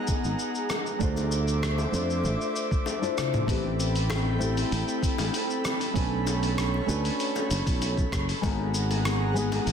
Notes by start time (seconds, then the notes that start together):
Already playing: G#3 B3 D#4 F#4 G#4 F#5 A#5
0.08 kick, high bongo, cabasa
0.24 G#1, cabasa
0.39 cabasa
0.55 cabasa
0.70 cross-stick, high bongo, cabasa
0.86 cabasa
0.99 D2 A3 D4 E4 F4 C5 E5 D6, kick, cabasa
1.03 C5
1.17 high bongo, cabasa
1.32 cabasa
1.48 cabasa
1.63 cross-stick, cabasa
1.78 high bongo, cabasa
1.91 F2 A3 D4 E4 F4, cabasa
1.96 C5
2.10 cabasa
2.24 A1, high bongo, cabasa
2.41 cabasa
2.56 cabasa
2.71 kick, cabasa
2.86 high bongo, cabasa
3.01 A3 D4 E4 F4 C5, cabasa
3.18 cross-stick, high tom, cabasa
3.34 mid tom, high bongo, cabasa
3.46 A1 A3 C4 E4 G4 A4 B4 G5 B5, kick, open hi-hat, high bongo, cabasa
3.80 open hi-hat, cabasa
3.96 open hi-hat, cabasa
4.10 cross-stick, open hi-hat, high bongo, cabasa
4.38 A3 C4 E4 G4 A4, cabasa
4.57 open hi-hat, high bongo, cabasa
4.72 A1, open hi-hat, cabasa
4.88 cabasa
5.03 kick, open hi-hat, cabasa
5.18 A1, open hi-hat, high bongo, cabasa
5.34 open hi-hat, cabasa
5.50 cabasa
5.65 cross-stick, high bongo, cabasa
5.81 open hi-hat, cabasa
5.93 B1 A3 C#4 D4 F#4 B4 C#5, kick, open hi-hat, cabasa
6.27 open hi-hat, high bongo, cabasa
6.43 open hi-hat, cabasa
6.58 cross-stick, open hi-hat, cabasa
6.74 high bongo
6.86 D2 A3 C#4 D4 F#4, cabasa
6.90 B4
7.05 open hi-hat, cabasa
7.20 open hi-hat, cabasa
7.36 high bongo, cabasa
7.51 F#1, open hi-hat, cabasa
7.67 B1, kick, open hi-hat, cabasa
7.82 open hi-hat, high bongo, cabasa
7.97 kick, cabasa
8.12 F#1, kick, cross-stick, cabasa
8.29 open hi-hat, cabasa
8.41 G#1 G#3 B3 D#4 F#4 G#4 A#4 F#5 A#5, kick, open hi-hat, high bongo, cabasa
8.75 open hi-hat, cabasa
8.91 open hi-hat, high bongo, cabasa
9.05 cross-stick, open hi-hat, cabasa
9.34 G#3 B3 D#4 F#4, cabasa
9.38 G#4
9.52 open hi-hat, high bongo, cabasa
9.67 G#1, open hi-hat, cabasa